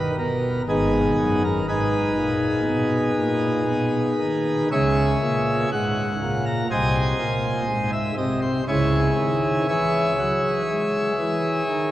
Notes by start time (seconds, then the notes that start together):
Already playing: D#3 B4
0.18 B2 A#4
0.69 G#1 G#2 B3 D#4 G#4
1.19 F#2
1.44 A#4
1.68 G#2 D#4 G#4 B4
2.17 A#2
2.67 B2
3.18 A#2
3.68 B2
4.19 D#3
4.71 C#2 C#3 G#4 C#5 E5
5.22 A#2
5.72 G#2 F#5
6.22 A#2
6.46 A#5
6.71 C2 C3 C5 D#5 G#5
7.19 A#2
7.68 G#2
7.92 E5
8.17 C3 D#5
8.41 C5
8.68 C#2 C#3 E4 G#4 C#5
9.18 D#3
9.68 E3 G#4 C#5 E5
10.19 F#3
10.69 G#3
11.19 E3
11.69 D#3